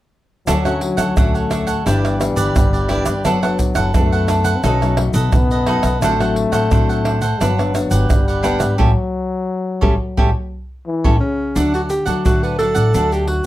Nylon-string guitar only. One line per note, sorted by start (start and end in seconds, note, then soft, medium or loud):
0.47 1.13 D3 medium
0.47 0.58 F#3 medium
0.47 0.58 A3 medium
0.47 0.58 C#4 medium
0.65 1.12 F#3 medium
0.65 1.12 A3 medium
0.65 1.12 C#4 medium
1.17 1.83 A2 medium
1.17 1.81 F#3 medium
1.17 1.81 A3 medium
1.17 1.81 C#4 medium
1.87 2.52 G2 medium
1.87 2.16 E3 medium
1.87 2.16 B3 medium
1.87 2.16 D4 medium
2.20 2.65 E3 soft
2.20 2.65 B3 medium
2.20 2.66 D4 medium
2.55 3.21 D3 medium
2.89 3.12 E3 soft
2.89 3.12 B3 medium
2.89 3.13 D4 medium
3.25 3.91 F#3 medium
3.25 3.37 B3 medium
3.25 3.37 D4 medium
3.25 3.37 A4 medium
3.43 3.89 B3 medium
3.43 3.89 D4 medium
3.43 3.90 A4 medium
3.94 4.60 F#3 medium
3.94 4.58 B3 medium
3.94 4.58 D4 medium
3.94 4.59 A4 medium
4.64 5.30 B2 medium
4.64 4.75 F#3 medium
4.64 4.76 A3 medium
4.64 4.76 D#4 medium
4.82 4.93 F#3 medium
4.82 4.93 A3 medium
4.82 4.94 D#4 medium
4.97 5.42 F#3 medium
4.97 5.42 A3 medium
4.97 5.43 D#4 medium
5.33 5.99 F#2 soft
5.66 5.89 F#3 medium
5.66 5.89 A3 medium
5.66 5.90 D#4 medium
6.01 6.68 A2 medium
6.01 6.12 F#3 soft
6.01 6.12 C4 medium
6.01 6.13 D4 medium
6.20 6.66 F#3 medium
6.20 6.66 C4 medium
6.20 6.66 D4 medium
6.71 7.37 A2 medium
6.71 7.16 F#3 medium
6.71 7.16 C4 medium
6.71 7.16 D4 medium
7.40 8.06 G2 medium
7.40 7.51 F#3 medium
7.40 7.51 B3 medium
7.40 7.51 D4 medium
7.58 7.70 F#3 medium
7.58 7.70 B3 medium
7.58 7.70 D4 medium
7.74 8.19 F#3 medium
7.74 8.20 B3 medium
7.74 8.20 D4 medium
8.10 8.76 D3 soft
8.44 8.76 B3 medium
8.44 8.76 D4 medium
8.79 8.90 G3 medium
8.79 8.90 A3 medium
8.79 8.90 C#4 medium
9.82 9.94 G3 medium
9.82 9.94 A3 medium
9.82 9.94 C#4 medium
10.17 10.29 G3 medium
10.17 10.29 A3 medium
10.17 10.29 C#4 medium
11.05 11.16 G3 medium
11.05 11.16 A3 medium
11.05 11.16 C#4 medium
11.55 12.22 D3 medium
11.55 11.88 F#3 medium
11.55 11.89 A3 soft
11.55 11.89 D4 medium
12.06 12.54 F#3 medium
12.06 12.54 A3 soft
12.06 12.54 D4 medium
12.25 12.91 A2 soft
12.59 12.89 F#3 soft
12.59 12.89 A3 medium
12.59 12.89 D4 medium
12.95 13.46 D3 soft
12.95 13.41 F#3 medium
12.95 13.41 A3 soft
12.95 13.42 D4 medium